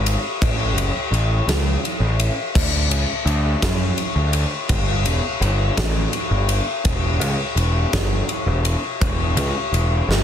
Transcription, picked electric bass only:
0.00 0.15 G#1 medium
0.42 0.76 A1 medium
0.76 0.90 F#1 loud
1.11 1.40 A1 medium
1.47 1.76 C#2 loud
2.00 2.29 A1 medium
2.55 2.89 D2 loud
2.89 3.04 C#2 loud
3.26 3.54 D2 medium
3.63 3.91 F#2 loud
4.16 4.44 D2 medium
4.69 5.05 G1 loud
5.05 5.20 E1 loud
5.41 5.69 G1 loud
5.78 6.06 A1 medium
6.31 6.59 G1 loud
6.85 7.20 E1 loud
7.20 7.34 C#2 loud
7.56 7.85 E1 medium
7.93 8.21 G1 loud
8.46 8.75 E1 loud
9.01 9.36 E1 loud
9.36 9.51 C#2 loud
9.72 10.01 E1 medium
10.08 10.23 G1 loud

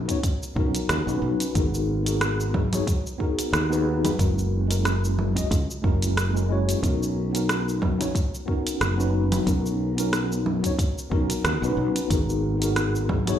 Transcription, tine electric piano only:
0.08 0.18 B3 medium
0.08 0.19 C#4 medium
0.08 0.19 D#4 medium
0.08 0.20 F#4 medium
0.08 0.20 C#5 loud
0.55 1.03 B3 medium
0.55 1.03 C#4 medium
0.55 1.04 D#4 medium
0.55 1.04 F#4 medium
0.55 1.04 A#4 loud
1.06 1.51 B3 medium
1.06 1.51 C#4 medium
1.06 1.52 D#4 medium
1.06 1.52 F#4 medium
1.06 1.53 B4 loud
1.54 2.02 B3 medium
1.54 2.02 D#4 medium
1.54 2.03 F#4 medium
1.54 2.03 G#4 medium
1.54 2.04 A#4 medium
2.05 2.67 B3 medium
2.05 2.68 D#4 medium
2.05 2.68 F#4 medium
2.05 2.69 G#4 medium
2.05 2.69 A#4 medium
2.71 2.82 B3 medium
2.71 2.82 D#4 medium
2.71 2.83 F#4 medium
2.71 2.83 G#4 medium
2.71 2.84 C#5 loud
3.18 3.66 B3 medium
3.18 3.67 D#4 medium
3.18 3.67 F#4 medium
3.18 3.67 G#4 medium
3.18 3.68 A#4 loud
3.70 4.15 B3 medium
3.70 4.15 D#4 medium
3.70 4.15 F#4 medium
3.70 4.16 G#4 medium
3.70 4.16 B4 loud
4.17 4.65 G#3 medium
4.17 4.65 C#4 medium
4.17 4.66 E4 medium
4.17 4.66 F#4 medium
4.17 4.67 A#4 medium
4.68 5.31 G#3 medium
4.68 5.31 C#4 medium
4.68 5.32 E4 medium
4.68 5.32 F#4 medium
4.68 5.33 A#4 medium
5.35 5.46 G#3 medium
5.35 5.46 C#4 medium
5.35 5.46 E4 medium
5.35 5.47 F#4 medium
5.35 5.47 D#5 loud
5.82 6.30 G#3 medium
5.82 6.30 C#4 medium
5.82 6.31 E4 medium
5.82 6.31 F#4 medium
5.82 6.32 A#4 loud
6.33 6.45 G#3 medium
6.33 6.45 C#4 medium
6.33 6.45 E4 medium
6.33 6.46 F#4 medium
6.33 6.46 A#4 medium
6.49 6.79 G#3 medium
6.49 6.79 C#4 medium
6.49 6.80 E4 medium
6.49 6.80 F#4 medium
6.49 6.81 C#5 loud
6.82 7.29 B3 medium
6.82 7.30 C#4 medium
6.82 7.30 D#4 medium
6.82 7.30 F#4 medium
6.82 7.31 A#4 medium
7.33 7.95 B3 medium
7.33 7.96 C#4 medium
7.33 7.96 D#4 medium
7.33 7.96 F#4 medium
7.33 7.97 A#4 medium
7.98 8.10 B3 medium
7.98 8.10 C#4 medium
7.98 8.10 D#4 medium
7.98 8.11 F#4 medium
7.98 8.11 C#5 loud
8.46 8.94 B3 medium
8.46 8.94 C#4 medium
8.46 8.94 D#4 medium
8.46 8.95 F#4 medium
8.46 8.95 A#4 loud
8.97 9.42 B3 medium
8.97 9.43 C#4 medium
8.97 9.43 D#4 medium
8.97 9.43 F#4 medium
8.97 9.44 B4 loud
9.45 9.93 B3 medium
9.45 9.93 C#4 medium
9.45 9.94 D#4 medium
9.45 9.94 F#4 medium
9.45 9.94 A#4 medium
9.96 10.58 B3 medium
9.96 10.59 C#4 medium
9.96 10.59 D#4 medium
9.96 10.60 F#4 medium
9.96 10.60 A#4 medium
10.63 10.74 B3 medium
10.63 10.74 C#4 medium
10.63 10.74 D#4 medium
10.63 10.75 F#4 medium
10.63 10.75 C#5 loud
11.10 11.58 B3 medium
11.10 11.58 C#4 medium
11.10 11.58 D#4 medium
11.10 11.59 F#4 medium
11.10 11.59 A#4 loud
11.62 12.06 B3 medium
11.62 12.07 C#4 medium
11.62 12.07 D#4 medium
11.62 12.08 F#4 medium
11.62 12.08 B4 loud
12.08 12.56 B3 medium
12.08 12.57 D#4 medium
12.08 12.57 F#4 medium
12.08 12.58 G#4 medium
12.08 12.58 A#4 medium
12.60 13.22 B3 medium
12.60 13.23 D#4 medium
12.60 13.23 F#4 medium
12.60 13.24 G#4 medium
12.60 13.24 A#4 medium
13.25 13.37 B3 medium
13.25 13.37 D#4 medium
13.25 13.38 F#4 medium
13.25 13.38 G#4 medium
13.25 13.39 C#5 loud

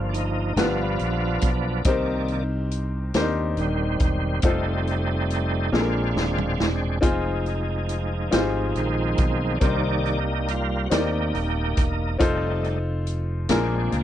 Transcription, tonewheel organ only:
0.00 0.53 F3 medium
0.09 0.15 D4 medium
0.14 0.58 D#4 loud
0.58 1.83 F3 medium
0.58 1.84 B3 medium
0.58 1.84 D4 medium
0.58 1.50 F4 loud
1.86 2.43 D#3 medium
1.86 2.44 A#3 medium
1.86 2.44 D5 medium
3.59 4.41 D#3 medium
3.59 4.41 G3 medium
3.59 4.44 C4 medium
4.45 5.70 G3 medium
4.45 5.71 A3 medium
4.45 5.70 C4 medium
4.45 5.32 D#4 medium
5.33 5.76 D#4 medium
5.72 6.99 G#3 medium
5.72 6.99 C4 soft
5.72 6.99 D4 medium
5.72 6.66 F4 medium
7.04 9.58 F3 medium
7.04 8.76 G#3 soft
7.04 9.59 D#4 medium
8.77 9.59 D#3 medium
8.77 9.59 G#3 medium
8.77 9.58 C4 medium
9.55 9.62 D4 medium
9.62 10.19 D#3 medium
9.62 10.88 G3 medium
9.62 10.88 A#3 medium
9.62 10.52 D#4 loud
9.62 10.20 D5 medium
10.51 10.87 F4 loud
10.86 10.92 F#4 medium
10.92 12.17 A#3 medium
10.92 12.18 D#4 medium
10.92 11.86 G4 medium
12.21 12.78 G3 medium
12.21 12.79 A3 soft
12.21 12.79 D#4 medium
13.50 14.03 G#3 medium
13.50 14.03 C4 medium
13.50 14.03 D4 medium
13.93 14.03 A#3 medium

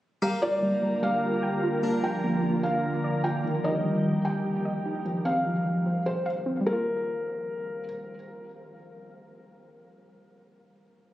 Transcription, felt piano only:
0.42 0.99 D5 medium
1.03 1.79 F5 medium
2.04 2.60 G5 medium
2.63 3.20 F5 medium
3.24 3.43 G5 medium
3.64 4.21 D#5 medium
4.25 5.01 G5 medium
5.25 6.02 F5 medium
6.06 6.25 C5 medium
6.67 7.83 A#4 medium

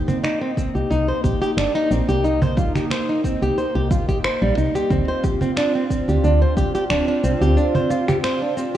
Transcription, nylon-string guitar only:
0.08 0.17 C4 medium
0.24 0.41 D#4 medium
0.41 0.50 C4 medium
0.57 0.74 C4 medium
0.75 0.90 G4 medium
0.91 1.07 D#4 medium
1.08 1.23 C5 medium
1.24 1.40 G4 medium
1.42 1.50 G4 loud
1.57 1.73 D4 medium
1.75 1.90 D#4 loud
1.91 2.08 C4 medium
2.09 2.23 G4 loud
2.24 2.40 D#4 medium
2.42 2.57 C5 medium
2.58 2.74 F4 medium
2.76 2.84 G4 medium
2.91 3.08 C5 medium
3.09 3.23 D#4 medium
3.24 3.41 C4 medium
3.42 3.57 G4 loud
3.58 3.73 C5 medium
3.75 3.90 G4 medium
3.91 4.08 F4 medium
4.08 4.17 G4 loud
4.24 4.41 C5 medium
4.42 4.56 G3 medium
4.57 4.73 D#4 medium
4.75 4.90 G4 loud
4.91 5.07 C4 medium
5.08 5.23 C5 medium
5.24 5.40 G4 medium
5.42 5.51 C4 medium
5.57 5.74 D4 medium
5.75 5.84 C4 medium
5.91 6.08 C4 medium
6.09 6.23 G4 medium
6.24 6.40 D4 medium
6.42 6.57 C5 medium
6.57 6.73 G4 medium
6.75 6.84 G4 loud
6.90 7.07 D4 medium
7.08 7.23 D4 loud
7.24 7.41 C4 medium
7.41 7.56 G4 loud
7.57 7.73 D4 medium
7.75 7.90 C5 medium
7.90 8.07 F4 medium
8.08 8.17 G4 loud
8.24 8.41 C5 medium
8.42 8.56 D4 medium
8.57 8.74 C4 medium

